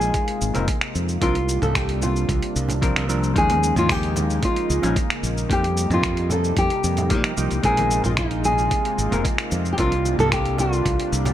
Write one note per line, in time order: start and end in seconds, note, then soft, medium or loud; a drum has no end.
0.00 0.10 A#1 loud
0.00 1.17 C3 medium
0.00 0.51 G#3 medium
0.00 1.19 G#3 medium
0.00 1.18 A#3 medium
0.00 0.51 C4 medium
0.00 0.52 D#4 medium
0.00 1.18 D#4 medium
0.00 7.60 F4 medium
0.00 0.91 G#4 medium
0.00 0.52 A#4 medium
0.00 shaker soft
0.14 kick loud
0.14 closed hi-hat medium
0.14 shaker soft
0.28 closed hi-hat soft
0.41 0.52 G#1 medium
0.41 shaker medium
0.54 0.66 F1 medium
0.54 0.68 G#3 medium
0.54 0.68 C4 medium
0.54 0.68 D#4 medium
0.54 0.68 A#4 medium
0.54 closed hi-hat soft
0.54 low conga medium
0.54 shaker soft
0.68 kick loud
0.68 closed hi-hat medium
0.68 shaker soft
0.81 finger snap medium
0.81 closed hi-hat soft
0.95 1.16 F2 medium
0.95 shaker medium
1.09 shaker soft
1.21 1.58 C2 medium
1.21 3.34 C3 medium
1.21 1.35 F3 medium
1.21 3.34 G3 medium
1.21 7.61 A#3 medium
1.21 1.36 C4 medium
1.21 3.34 D4 medium
1.21 1.36 D4 medium
1.21 1.62 F4 medium
1.21 1.36 A#4 medium
1.21 kick loud
1.21 closed hi-hat medium
1.21 shaker soft
1.35 closed hi-hat soft
1.49 shaker medium
1.62 2.25 C2 loud
1.62 1.77 A4 medium
1.62 mid tom medium
1.62 shaker soft
1.75 2.03 G4 medium
1.75 finger snap medium
1.75 kick loud
1.75 closed hi-hat medium
1.75 shaker soft
1.89 closed hi-hat soft
2.02 2.52 F4 medium
2.02 low conga medium
2.02 shaker medium
2.16 shaker soft
2.29 2.40 C2 medium
2.29 kick loud
2.29 closed hi-hat medium
2.29 shaker soft
2.43 closed hi-hat soft
2.56 2.92 C2 loud
2.56 shaker medium
2.69 closed hi-hat soft
2.69 low conga medium
2.69 shaker soft
2.81 3.05 F3 medium
2.81 3.06 C4 medium
2.81 3.06 D4 medium
2.81 3.06 A#4 medium
2.81 kick loud
2.81 closed hi-hat medium
2.81 shaker soft
2.96 3.32 C2 loud
2.96 finger snap medium
2.96 closed hi-hat soft
3.08 3.32 F3 medium
3.08 3.32 C4 medium
3.08 3.33 D4 medium
3.08 3.33 A#4 medium
3.08 shaker medium
3.23 shaker soft
3.34 3.72 D#2 medium
3.34 5.48 C#3 medium
3.34 4.79 F3 medium
3.34 5.48 G#3 medium
3.34 4.81 G#3 medium
3.34 4.80 C#4 medium
3.34 5.48 D#4 medium
3.34 4.80 D#4 medium
3.34 kick loud
3.34 closed hi-hat medium
3.34 shaker soft
3.38 3.78 G#4 loud
3.50 closed hi-hat soft
3.50 high conga medium
3.63 shaker medium
3.76 4.39 D#2 medium
3.76 3.91 F4 medium
3.76 mid tom medium
3.76 shaker soft
3.89 4.44 G4 loud
3.89 finger snap medium
3.89 kick loud
3.89 closed hi-hat medium
3.89 shaker soft
4.03 closed hi-hat soft
4.16 high conga medium
4.16 low conga medium
4.16 shaker medium
4.30 shaker soft
4.43 4.94 F4 medium
4.43 kick loud
4.43 closed hi-hat medium
4.43 shaker soft
4.56 closed hi-hat soft
4.70 4.81 C#2 medium
4.70 shaker medium
4.82 4.94 A#1 medium
4.82 4.96 F3 medium
4.82 4.96 C#4 medium
4.82 4.97 D#4 medium
4.82 4.97 G#4 medium
4.82 closed hi-hat soft
4.82 low conga medium
4.82 shaker soft
4.96 kick loud
4.96 closed hi-hat medium
4.96 shaker soft
5.10 finger snap medium
5.10 closed hi-hat soft
5.23 5.45 A#1 medium
5.23 shaker medium
5.37 shaker soft
5.49 5.86 F2 medium
5.49 7.63 C3 medium
5.49 5.63 F3 medium
5.49 7.62 G3 medium
5.49 5.64 A#3 medium
5.49 5.64 D#4 medium
5.49 9.75 D#4 medium
5.49 5.64 G4 medium
5.49 5.93 G4 medium
5.49 kick loud
5.49 closed hi-hat medium
5.49 shaker soft
5.64 closed hi-hat soft
5.77 shaker medium
5.90 6.53 F2 medium
5.90 6.32 F4 medium
5.90 mid tom medium
5.90 shaker soft
6.03 finger snap medium
6.03 kick loud
6.03 closed hi-hat medium
6.03 shaker soft
6.17 closed hi-hat soft
6.30 6.56 A4 loud
6.30 low conga medium
6.30 shaker medium
6.44 shaker soft
6.57 6.68 F2 medium
6.57 7.34 G4 medium
6.57 kick loud
6.57 closed hi-hat medium
6.57 shaker soft
6.70 closed hi-hat soft
6.84 7.12 F2 loud
6.84 shaker medium
6.97 closed hi-hat soft
6.97 low conga medium
6.97 shaker soft
7.10 7.22 A#2 medium
7.10 7.34 F3 medium
7.10 7.34 A#3 medium
7.10 7.35 D#4 medium
7.10 7.35 G4 medium
7.10 kick loud
7.10 closed hi-hat medium
7.10 shaker soft
7.24 finger snap medium
7.24 closed hi-hat soft
7.37 7.49 C2 medium
7.37 7.61 F3 medium
7.37 7.61 A#3 medium
7.37 7.61 D#4 medium
7.37 7.62 G4 medium
7.37 shaker medium
7.51 7.62 C2 medium
7.51 closed hi-hat soft
7.51 shaker soft
7.63 8.00 A#1 medium
7.63 11.33 C3 medium
7.63 9.08 G#3 medium
7.63 9.76 G#3 medium
7.63 11.33 A#3 medium
7.63 9.08 C4 medium
7.63 9.09 D#4 medium
7.63 11.33 F4 medium
7.63 8.05 G#4 loud
7.63 9.10 A#4 medium
7.63 kick loud
7.63 closed hi-hat medium
7.63 shaker soft
7.77 closed hi-hat soft
7.77 high conga medium
7.91 muted conga soft
7.91 shaker medium
8.04 8.68 A#1 loud
8.04 8.11 F4 medium
8.04 mid tom medium
8.04 shaker soft
8.17 8.46 D#4 medium
8.17 finger snap medium
8.17 kick loud
8.17 closed hi-hat medium
8.17 shaker soft
8.31 closed hi-hat soft
8.44 9.48 G#4 medium
8.44 high conga medium
8.44 low conga medium
8.44 shaker medium
8.58 shaker soft
8.71 kick medium
8.71 closed hi-hat medium
8.71 shaker soft
8.85 closed hi-hat soft
8.98 9.09 G#1 medium
8.98 shaker medium
9.11 9.22 F1 medium
9.11 9.25 G#3 medium
9.11 9.25 C4 medium
9.11 9.25 D#4 medium
9.11 9.26 A#4 medium
9.11 closed hi-hat soft
9.11 low conga medium
9.11 shaker soft
9.25 kick loud
9.25 closed hi-hat medium
9.25 shaker soft
9.38 finger snap medium
9.38 closed hi-hat soft
9.51 9.73 F2 medium
9.51 muted conga soft
9.51 shaker medium
9.65 shaker soft
9.73 9.79 G4 medium
9.78 10.15 C2 medium
9.78 9.92 F3 medium
9.78 11.33 G3 medium
9.78 9.92 C4 medium
9.78 11.33 D4 medium
9.78 9.93 D4 medium
9.78 10.17 F4 medium
9.78 9.93 A#4 medium
9.78 kick loud
9.78 closed hi-hat medium
9.78 shaker soft
9.92 closed hi-hat soft
10.05 muted conga soft
10.05 shaker medium
10.19 10.81 C2 medium
10.19 10.33 A4 loud
10.19 mid tom medium
10.19 shaker soft
10.32 10.58 G4 loud
10.32 finger snap medium
10.32 kick loud
10.32 closed hi-hat medium
10.32 shaker soft
10.45 closed hi-hat soft
10.58 11.09 F4 medium
10.58 low conga medium
10.58 shaker medium
10.73 shaker soft
10.85 10.97 C2 medium
10.85 kick loud
10.85 closed hi-hat medium
10.85 shaker soft
11.00 closed hi-hat soft
11.12 11.33 C2 loud
11.12 shaker medium
11.25 closed hi-hat soft
11.25 low conga medium
11.25 shaker soft